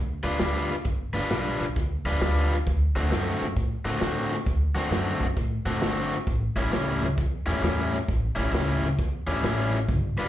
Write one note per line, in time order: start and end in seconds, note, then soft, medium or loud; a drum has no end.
0.00 0.14 D2 medium
0.23 0.34 D2 medium
0.23 0.38 G3 medium
0.23 0.39 D4 medium
0.23 0.39 F4 medium
0.23 0.39 B4 medium
0.23 snare soft
0.23 closed hi-hat medium
0.39 0.70 D2 medium
0.39 0.73 G3 medium
0.39 0.74 D4 medium
0.39 0.74 F4 medium
0.39 0.74 B4 medium
0.39 snare loud
0.39 closed hi-hat medium
0.69 snare soft
0.69 closed hi-hat medium
0.84 1.04 G1 medium
0.84 kick loud
0.84 snare soft
0.84 closed hi-hat medium
1.14 1.24 G1 medium
1.14 1.29 G3 medium
1.14 1.29 D4 medium
1.14 1.30 F4 medium
1.14 1.30 B4 medium
1.14 snare soft
1.14 closed hi-hat medium
1.30 1.50 B1 medium
1.30 1.64 G3 medium
1.30 1.64 D4 medium
1.30 1.64 F4 medium
1.30 1.65 B4 medium
1.30 snare loud
1.30 closed hi-hat medium
1.60 1.71 B1 medium
1.60 snare soft
1.60 closed hi-hat medium
1.76 1.95 D2 medium
1.76 kick loud
1.76 snare soft
1.76 closed hi-hat medium
2.05 2.15 D2 medium
2.05 2.21 G3 medium
2.05 2.21 D4 medium
2.05 2.21 F4 medium
2.05 2.21 B4 medium
2.05 snare soft
2.05 closed hi-hat medium
2.21 2.67 D2 medium
2.21 2.55 G3 medium
2.21 2.55 D4 medium
2.21 2.55 F4 medium
2.21 2.55 B4 medium
2.21 snare loud
2.21 closed hi-hat medium
2.51 snare soft
2.51 closed hi-hat medium
2.67 2.86 D2 medium
2.67 kick loud
2.67 snare soft
2.67 closed hi-hat medium
2.96 3.07 D2 medium
2.96 3.10 D3 medium
2.96 3.10 A3 medium
2.96 3.10 C4 medium
2.96 3.11 F#4 medium
2.96 snare soft
2.96 closed hi-hat medium
3.11 3.32 F#2 medium
3.11 3.45 D3 medium
3.11 3.45 A3 medium
3.11 3.45 C4 medium
3.11 3.45 F#4 medium
3.11 snare medium
3.11 closed hi-hat medium
3.41 3.52 F#2 medium
3.41 snare soft
3.41 closed hi-hat medium
3.56 3.76 A2 medium
3.56 kick loud
3.56 snare soft
3.56 closed hi-hat medium
3.85 3.96 A2 medium
3.85 3.99 D3 medium
3.85 3.99 A3 medium
3.85 4.00 C4 medium
3.85 4.00 F#4 medium
3.85 snare soft
3.85 closed hi-hat medium
4.00 4.32 A2 medium
4.00 4.34 D3 medium
4.00 4.35 A3 medium
4.00 4.35 C4 medium
4.00 4.35 F#4 medium
4.00 snare loud
4.00 closed hi-hat medium
4.31 snare soft
4.31 closed hi-hat medium
4.46 4.66 D2 medium
4.46 kick loud
4.46 snare soft
4.46 closed hi-hat medium
4.75 4.86 D2 medium
4.75 4.89 D3 medium
4.75 4.89 A3 medium
4.75 4.90 C4 medium
4.75 4.90 F#4 medium
4.75 snare soft
4.75 closed hi-hat medium
4.90 5.10 F#2 medium
4.90 5.25 D3 medium
4.90 5.25 A3 medium
4.90 5.25 C4 medium
4.90 5.25 F#4 medium
4.90 snare loud
4.90 closed hi-hat medium
5.20 5.31 F#2 medium
5.20 kick medium
5.20 snare soft
5.20 closed hi-hat medium
5.37 5.56 A2 medium
5.37 kick loud
5.37 snare soft
5.37 closed hi-hat medium
5.66 5.76 A2 medium
5.66 5.80 D3 medium
5.66 5.80 A3 medium
5.66 5.81 C4 medium
5.66 5.81 F#4 medium
5.66 snare soft
5.66 closed hi-hat medium
5.81 6.12 G1 medium
5.81 6.15 D3 medium
5.81 6.16 A3 medium
5.81 6.16 C4 medium
5.81 6.16 F#4 medium
5.81 snare loud
5.81 closed hi-hat medium
6.11 snare soft
6.11 closed hi-hat medium
6.27 6.47 A1 medium
6.27 kick loud
6.27 snare soft
6.27 closed hi-hat medium
6.56 6.67 A1 medium
6.56 6.70 A2 medium
6.56 6.71 G3 medium
6.56 6.71 C#4 medium
6.56 6.72 E4 medium
6.56 snare soft
6.56 closed hi-hat medium
6.72 6.91 C#2 medium
6.72 7.06 A2 medium
6.72 7.06 G3 medium
6.72 7.06 C#4 medium
6.72 7.06 E4 medium
6.72 snare loud
6.72 closed hi-hat medium
7.02 7.12 C#2 medium
7.02 snare soft
7.02 closed hi-hat medium
7.18 7.37 E2 medium
7.18 kick loud
7.18 snare soft
7.18 closed hi-hat medium
7.46 7.57 E2 medium
7.46 7.61 A2 medium
7.46 7.61 G3 medium
7.46 7.62 C#4 medium
7.46 7.62 E4 medium
7.46 snare soft
7.46 closed hi-hat medium
7.62 7.93 E2 medium
7.62 7.96 A2 medium
7.62 7.96 G3 medium
7.62 7.97 C#4 medium
7.62 7.97 E4 medium
7.62 snare loud
7.62 closed hi-hat medium
7.93 snare soft
7.93 closed hi-hat medium
8.08 8.28 A1 medium
8.08 kick loud
8.08 snare soft
8.08 closed hi-hat medium
8.35 8.47 A1 medium
8.35 8.51 A2 medium
8.35 8.51 G3 medium
8.35 8.52 C#4 medium
8.35 8.52 E4 medium
8.35 snare soft
8.35 closed hi-hat medium
8.52 8.72 C#2 medium
8.52 8.86 A2 medium
8.52 8.86 G3 medium
8.52 8.87 C#4 medium
8.52 8.87 E4 medium
8.52 snare loud
8.52 closed hi-hat medium
8.82 8.92 C#2 medium
8.82 snare soft
8.82 closed hi-hat medium
8.99 9.18 E2 medium
8.99 kick medium
8.99 snare soft
8.99 closed hi-hat medium
9.27 9.38 E2 medium
9.27 9.42 A2 medium
9.27 9.42 G3 medium
9.27 9.43 C#4 medium
9.27 9.43 E4 medium
9.27 snare soft
9.27 closed hi-hat medium
9.43 9.90 A1 medium
9.43 9.77 A2 medium
9.43 9.77 G3 medium
9.43 9.77 C#4 medium
9.43 9.77 E4 medium
9.43 snare loud
9.43 closed hi-hat medium
9.73 snare soft
9.73 closed hi-hat medium
9.89 10.08 G1 medium
9.89 kick loud
9.89 snare soft
9.89 closed hi-hat medium
10.17 10.28 G1 medium
10.17 10.28 G3 medium
10.17 10.28 D4 medium
10.17 10.28 F4 medium
10.17 10.28 B4 medium
10.17 snare soft
10.17 closed hi-hat medium